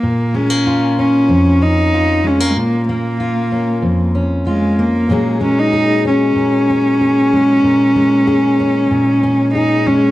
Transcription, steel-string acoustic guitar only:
\new Staff \with { instrumentName = "Steel-string acoustic guitar" } { \time 4/4 \key bes \minor \tempo 4 = 95 << { r8 aes16 bes16 f'8 des'4 des'8 f'8 aes16 bes16 | r8 bes8 f'8 des'4 des'8 f'8 bes8 | <ges aes des' aes'>8 aes8 aes'8 des'4 des'8 aes'8 aes8~ | aes8 aes8 aes'8 des'4 des'8 aes'8 aes8 | } \\ { bes,2 f,2 | bes,2 f,2 | bes,2 bes,2 | bes,2 bes,2 | } >> }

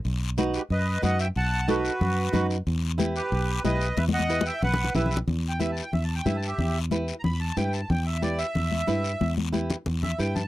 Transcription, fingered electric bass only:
\new Staff \with { instrumentName = "Fingered electric bass" } { \clef bass \time 4/4 \key e \minor \tempo 4 = 183 b,,2 fis,4 fis,4 | b,,2 fis,4 fis,4 | e,2 b,,4 b,,4 | e,2 b,,4 b,,4 |
e,2 e,4 g,4 | e,2 e,4 g,4 | e,2 e,4 g,4 | e,2 e,4 g,4 | }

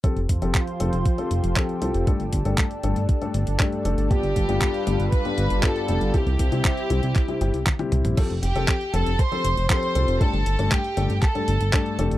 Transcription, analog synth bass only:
\new Staff \with { instrumentName = "Analog synth bass" } { \clef bass \time 4/4 \key f \major \tempo 4 = 118 r16 f,,16 f,,16 f,,16 r8 f,,16 f,,16 r8 f,,16 f,,16 r8 c,16 f,,16 | r16 g,,16 g,,16 g,,16 r8 g,,16 g,,16 r8 g,,16 g,,16 r8 f,,16 g,,16 | r16 g,,16 g,,16 g,,16 r8 g,,16 g,,16 r8 g,,16 g,,16 r8 f,,16 g,,16 | r16 c,16 c,16 c,16 r8 c,16 c,16 r8 g,,16 c,16 r8 c,16 bes,,16 |
r16 f,,16 f,,16 f,,16 r8 f,,16 f,,16 r8 f,,16 f,,16 r8 c,16 f,,16 | r16 g,,16 g,,16 g,,16 r8 g,,16 g,,16 r8 g,,16 g,,16 r8 f,,16 g,,16 | }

